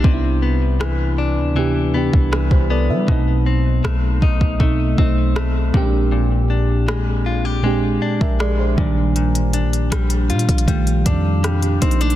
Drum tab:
HH |--------------------------------|--------------------------------|--------------------------------|x-x-x-x-x-x-xxxxx-x-x---x-x-xxxx|
SD |--------r---------------r-------|--------r---------------r-------|--------r---------------r-------|--------r---------------r-------|
BD |o---------------------o---o-----|o-----------o-o-o---o-------o---|----------------------o-----o---|--------------o-o---o-------o---|